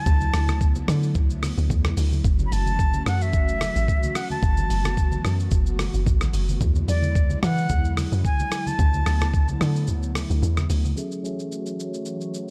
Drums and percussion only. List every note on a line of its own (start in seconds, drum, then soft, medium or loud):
0.06 kick loud
0.06 low conga medium
0.06 shaker medium
0.21 high conga medium
0.21 shaker medium
0.34 cross-stick loud
0.34 open hi-hat medium
0.34 shaker medium
0.48 cross-stick loud
0.48 high conga medium
0.48 shaker medium
0.61 kick loud
0.61 shaker medium
0.75 high conga medium
0.75 shaker medium
0.88 cross-stick loud
0.88 open hi-hat medium
0.88 low conga medium
0.88 shaker medium
1.03 shaker medium
1.15 kick loud
1.15 low conga medium
1.15 shaker medium
1.30 high conga soft
1.30 shaker medium
1.42 cross-stick loud
1.42 open hi-hat medium
1.42 high conga medium
1.42 shaker loud
1.58 shaker medium
1.70 kick loud
1.70 low conga medium
1.70 shaker medium
1.85 cross-stick loud
1.85 high conga medium
1.85 shaker medium
1.97 open hi-hat medium
1.97 shaker loud
2.12 high conga medium
2.12 shaker medium
2.24 kick loud
2.24 low conga medium
2.24 shaker medium
2.39 high conga medium
2.39 shaker medium
2.52 open hi-hat medium
2.52 shaker medium
2.66 high conga medium
2.66 shaker medium
2.79 kick loud
2.79 shaker medium
2.93 high conga medium
2.93 shaker medium
3.06 cross-stick loud
3.06 open hi-hat medium
3.06 low conga medium
3.06 shaker medium
3.21 shaker medium
3.33 kick loud
3.33 low conga medium
3.33 shaker medium
3.48 shaker medium
3.61 cross-stick loud
3.61 open hi-hat medium
3.61 high conga medium
3.61 shaker loud
3.76 shaker medium
3.88 kick loud
3.88 low conga medium
3.88 shaker medium
4.03 high conga medium
4.03 shaker medium
4.15 cross-stick loud
4.15 open hi-hat medium
4.15 shaker loud
4.30 high conga medium
4.30 shaker medium
4.43 kick loud
4.43 low conga medium
4.43 shaker medium
4.57 high conga medium
4.57 shaker medium
4.70 open hi-hat medium
4.70 shaker medium
4.84 cross-stick medium
4.84 high conga medium
4.84 shaker medium
4.97 kick loud
4.97 shaker medium
5.12 high conga medium
5.12 shaker medium
5.25 cross-stick loud
5.25 open hi-hat medium
5.25 low conga medium
5.25 shaker loud
5.39 shaker medium
5.51 kick loud
5.51 low conga medium
5.51 shaker medium
5.66 shaker medium
5.79 cross-stick loud
5.79 open hi-hat medium
5.79 high conga medium
5.79 shaker loud
5.94 shaker medium
6.06 kick medium
6.06 low conga medium
6.06 shaker medium
6.21 cross-stick loud
6.21 high conga medium
6.21 shaker medium
6.33 open hi-hat medium
6.33 shaker loud
6.49 high conga medium
6.49 shaker soft
6.61 kick loud
6.61 low conga medium
6.61 shaker medium
6.75 high conga medium
6.75 shaker medium
6.88 open hi-hat medium
6.88 shaker loud
7.02 high conga medium
7.02 shaker medium
7.15 kick loud
7.15 shaker medium
7.30 high conga medium
7.30 shaker medium
7.43 cross-stick medium
7.43 open hi-hat medium
7.43 low conga medium
7.43 shaker loud
7.58 shaker medium
7.69 kick loud
7.69 low conga medium
7.69 shaker medium
7.85 shaker medium
7.97 cross-stick loud
7.97 open hi-hat medium
7.97 high conga medium
7.97 shaker loud
8.12 shaker medium
8.24 kick medium
8.24 low conga medium
8.24 shaker medium
8.39 high conga medium
8.39 shaker medium
8.52 cross-stick medium
8.52 open hi-hat medium
8.52 shaker loud
8.67 high conga medium
8.67 shaker medium
8.79 kick loud
8.79 low conga medium
8.79 shaker medium
8.93 high conga medium
8.93 shaker medium
9.06 cross-stick loud
9.06 open hi-hat medium
9.06 shaker medium
9.21 cross-stick medium
9.21 high conga medium
9.21 shaker medium
9.34 kick loud
9.34 shaker medium
9.48 high conga medium
9.48 shaker medium
9.61 cross-stick loud
9.61 open hi-hat medium
9.61 low conga medium
9.61 shaker medium
9.76 shaker medium
9.87 low conga medium
9.87 shaker medium
10.03 shaker medium
10.15 cross-stick loud
10.15 open hi-hat medium
10.15 high conga medium
10.15 shaker loud
10.30 shaker medium
10.42 low conga medium
10.42 shaker medium
10.57 cross-stick loud
10.57 high conga medium
10.57 shaker medium
10.70 open hi-hat medium
10.70 shaker loud
10.85 high conga medium
10.85 shaker medium
10.97 shaker medium
11.11 shaker medium
11.25 shaker medium
11.39 shaker medium
11.52 shaker medium
11.66 shaker medium
11.80 shaker medium
11.94 shaker medium
12.05 shaker medium
12.21 shaker soft
12.34 shaker medium